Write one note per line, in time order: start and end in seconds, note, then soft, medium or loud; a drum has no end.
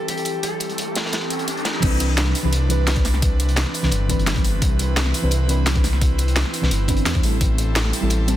0.00 1.79 E3 medium
0.00 1.62 G3 medium
0.00 1.63 C4 medium
0.00 1.79 C4 medium
0.00 1.64 E4 medium
0.00 1.79 G4 medium
0.00 1.65 A4 medium
0.00 1.79 A4 medium
0.00 riser medium
0.08 0.43 G4 medium
0.08 closed hi-hat medium
0.17 closed hi-hat soft
0.25 closed hi-hat medium
0.43 1.44 A4 medium
0.43 closed hi-hat medium
0.60 closed hi-hat medium
0.60 closed hi-hat loud
0.69 closed hi-hat soft
0.78 closed hi-hat medium
0.95 snare loud
0.95 closed hi-hat loud
0.95 closed hi-hat medium
1.06 snare soft
1.13 snare loud
1.13 closed hi-hat medium
1.30 closed hi-hat medium
1.39 closed hi-hat soft
1.48 closed hi-hat medium
1.57 closed hi-hat soft
1.65 snare loud
1.65 closed hi-hat medium
1.65 closed hi-hat loud
1.80 2.34 C2 loud
1.80 2.34 E3 loud
1.80 7.20 E3 medium
1.80 2.35 C4 medium
1.80 8.37 C4 medium
1.80 4.59 D4 medium
1.80 2.36 D4 loud
1.80 7.20 B4 loud
1.80 kick loud
1.80 closed hi-hat medium
1.80 crash loud
1.85 2.36 B4 loud
2.00 closed hi-hat loud
2.00 closed hi-hat medium
2.17 snare loud
2.17 closed hi-hat medium
2.27 snare soft
2.35 closed hi-hat medium
2.35 open hi-hat medium
2.43 3.65 C2 loud
2.43 2.51 E3 medium
2.43 2.52 C4 medium
2.43 2.52 D4 medium
2.43 2.53 B4 medium
2.53 closed hi-hat medium
2.69 2.94 E3 medium
2.69 2.94 C4 medium
2.69 2.94 D4 medium
2.69 2.95 B4 loud
2.69 closed hi-hat medium
2.69 closed hi-hat loud
2.87 snare loud
2.87 closed hi-hat medium
2.95 3.04 E3 medium
2.95 3.04 C4 medium
2.95 3.05 D4 medium
2.95 3.05 B4 medium
2.95 kick loud
2.95 closed hi-hat soft
3.05 snare medium
3.05 closed hi-hat medium
3.05 open hi-hat medium
3.14 snare soft
3.22 kick loud
3.22 closed hi-hat medium
3.40 closed hi-hat loud
3.40 closed hi-hat medium
3.49 closed hi-hat soft
3.56 snare loud
3.56 closed hi-hat medium
3.66 snare soft
3.74 closed hi-hat medium
3.74 open hi-hat medium
3.82 3.91 C2 loud
3.82 3.91 E3 medium
3.82 3.91 C4 medium
3.82 3.92 D4 medium
3.82 3.92 B4 medium
3.82 snare soft
3.92 4.17 G1 loud
3.92 closed hi-hat loud
3.92 closed hi-hat medium
4.08 4.33 E3 medium
4.08 4.34 C4 medium
4.08 4.34 D4 medium
4.08 4.35 B4 loud
4.08 kick medium
4.08 closed hi-hat medium
4.19 4.61 G1 loud
4.19 closed hi-hat soft
4.27 snare loud
4.27 closed hi-hat medium
4.35 4.43 E3 medium
4.35 4.44 C4 medium
4.35 4.44 D4 medium
4.35 4.45 B4 loud
4.35 kick loud
4.35 closed hi-hat soft
4.44 closed hi-hat medium
4.44 open hi-hat medium
4.62 5.13 C2 medium
4.62 8.37 E4 medium
4.62 kick loud
4.62 closed hi-hat loud
4.62 closed hi-hat medium
4.79 closed hi-hat medium
4.97 snare loud
4.97 closed hi-hat medium
5.06 snare soft
5.14 closed hi-hat medium
5.14 open hi-hat medium
5.22 6.44 C2 loud
5.22 5.30 E3 medium
5.22 5.31 C4 medium
5.22 5.31 D4 medium
5.22 5.32 B4 medium
5.31 closed hi-hat medium
5.48 5.73 E3 medium
5.48 5.73 C4 medium
5.48 5.74 D4 medium
5.48 5.74 B4 loud
5.48 closed hi-hat medium
5.66 snare loud
5.66 closed hi-hat loud
5.66 closed hi-hat medium
5.74 5.83 E3 medium
5.74 5.83 C4 medium
5.74 5.84 D4 medium
5.74 5.84 B4 loud
5.74 kick loud
5.74 closed hi-hat soft
5.84 snare medium
5.84 closed hi-hat medium
5.84 open hi-hat medium
5.93 snare soft
6.01 kick loud
6.01 closed hi-hat medium
6.18 closed hi-hat medium
6.28 closed hi-hat soft
6.36 snare loud
6.36 closed hi-hat medium
6.45 snare soft
6.54 closed hi-hat medium
6.54 open hi-hat medium
6.61 6.70 C2 loud
6.61 6.70 E3 medium
6.61 6.70 C4 medium
6.61 6.71 D4 medium
6.61 6.71 B4 medium
6.61 snare soft
6.71 6.96 G1 medium
6.71 closed hi-hat medium
6.87 7.12 E3 loud
6.87 7.13 C4 medium
6.87 7.13 D4 medium
6.87 7.14 B4 loud
6.87 kick medium
6.87 closed hi-hat medium
6.97 7.05 G1 loud
6.97 closed hi-hat soft
7.06 7.22 E2 medium
7.06 snare loud
7.06 closed hi-hat medium
7.14 7.21 E3 medium
7.14 7.21 C4 medium
7.14 7.22 D4 medium
7.14 7.22 C5 medium
7.14 kick loud
7.14 closed hi-hat soft
7.22 7.39 A1 medium
7.22 7.36 G3 medium
7.22 8.37 G3 medium
7.22 7.37 C4 medium
7.22 7.37 E4 medium
7.22 8.37 A4 loud
7.22 7.37 A4 medium
7.22 closed hi-hat medium
7.22 open hi-hat medium
7.41 7.92 A1 loud
7.41 kick loud
7.41 closed hi-hat medium
7.41 closed hi-hat loud
7.58 closed hi-hat medium
7.75 snare loud
7.75 closed hi-hat medium
7.85 snare soft
7.93 closed hi-hat medium
7.93 open hi-hat medium
8.01 8.37 A1 loud
8.01 8.10 G3 medium
8.01 8.10 C4 medium
8.01 8.10 E4 medium
8.01 8.11 A4 medium
8.10 closed hi-hat medium
8.27 8.37 G3 medium
8.27 8.37 C4 medium
8.27 8.37 E4 medium
8.27 8.37 A4 loud
8.27 closed hi-hat medium